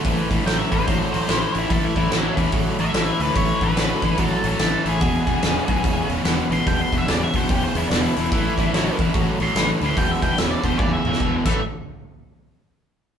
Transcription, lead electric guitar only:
0.46 0.58 G5 loud
0.59 0.73 E5 medium
0.73 1.53 C5 loud
1.58 1.71 E4 medium
1.69 1.83 A4 loud
1.84 1.96 E4 loud
1.97 2.38 E4 medium
2.81 3.21 E5 loud
3.21 3.35 B4 medium
3.36 3.63 C#5 medium
3.63 4.17 B4 loud
4.20 4.46 A4 loud
4.48 4.87 A4 medium
4.89 6.08 G#4 loud
6.53 6.66 C6 medium
6.67 6.80 G5 medium
6.81 6.94 C6 medium
6.98 7.09 E5 medium
7.11 7.23 D5 medium
7.23 7.35 E5 medium
7.37 7.49 C5 loud
7.50 7.63 G4 medium
7.64 7.76 C5 medium
7.77 7.87 E4 medium
7.88 8.02 D4 medium
8.02 8.16 E4 medium
8.17 8.97 E4 loud
9.43 9.68 C6 medium
9.86 9.97 C6 medium
9.98 10.11 G5 medium
10.11 10.22 E5 loud
10.22 10.38 G5 medium
10.38 10.50 E5 medium
10.50 10.64 D5 medium
10.65 10.78 C5 medium
10.78 10.91 D5 loud
10.93 11.32 E5 medium
11.46 11.60 E5 medium

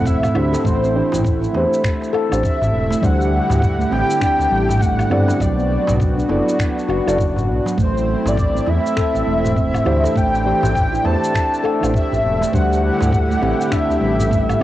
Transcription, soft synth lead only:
0.07 0.65 E5 loud
0.66 1.21 C5 medium
2.44 3.06 E5 loud
3.04 3.92 F#5 loud
3.93 4.82 G5 loud
4.81 5.42 F#5 loud
5.41 6.00 D5 medium
7.81 8.29 C5 medium
8.28 8.70 D5 medium
8.69 10.18 E5 loud
10.17 11.07 G5 loud
11.05 11.64 A5 loud
11.95 12.50 E5 loud
12.54 13.74 F#5 loud
13.72 14.62 E5 loud

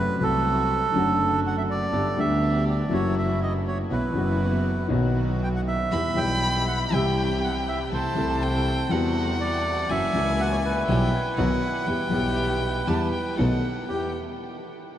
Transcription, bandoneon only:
0.00 0.24 B4 loud
0.23 1.40 A4 loud
1.47 1.56 F#5 loud
1.58 1.63 E5 medium
1.71 2.20 D5 loud
2.20 2.64 E5 loud
2.69 2.93 D5 medium
2.93 3.15 C#5 loud
3.18 3.40 E5 medium
3.43 3.53 D#5 medium
3.67 3.78 C#5 medium
3.92 4.88 B4 medium
5.43 5.49 G5 loud
5.56 5.61 F#5 medium
5.68 6.19 E5 loud
6.17 6.64 G5 loud
6.68 6.79 F#5 medium
6.94 7.05 E5 loud
7.20 7.42 G5 medium
7.44 7.55 F#5 medium
7.68 7.79 E5 loud
7.94 8.89 C5 medium
9.41 9.92 D5 loud
9.91 10.41 E5 loud
10.40 10.53 F#5 loud
10.51 10.57 C#5 medium
10.64 13.35 B4 loud
13.89 14.13 G4 medium

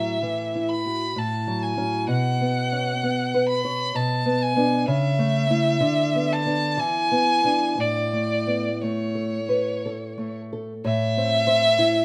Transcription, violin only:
0.00 0.71 E5 medium
0.69 1.20 B5 medium
1.18 1.64 A5 medium
1.62 2.09 G#5 medium
2.11 3.48 F#5 medium
3.49 3.97 B5 medium
3.96 4.44 A5 medium
4.42 4.88 G#5 medium
4.88 6.34 E5 medium
6.32 6.80 A5 medium
6.79 7.82 G#5 medium
7.80 8.83 D5 medium
8.82 10.36 C#5 soft
10.86 12.05 E5 loud

